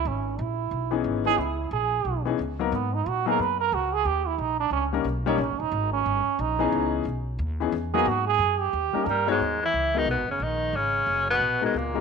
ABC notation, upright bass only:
X:1
M:4/4
L:1/8
Q:"Swing" 1/4=180
K:G#m
V:1 name="Upright bass" clef=bass
G,,,2 A,,,2 B,,,2 G,,,2 | C,,2 A,,,2 B,,,2 C,,2 | G,,2 A,,2 F,,2 C,,2 | D,,2 A,,,2 C,,2 B,,,2 |
(3A,,, =G,,, D,,, ^G,,,2 =G,,, z A,,,2 | C,,2 B,,,2 D,,2 E,,2 | G,,2 F,,2 D,, z =G,,2 | D,,2 C,,2 (3B,,, G,,, F,,, A,,,2 |
G,,,2 F,,,2 A,,,2 C,,2 |]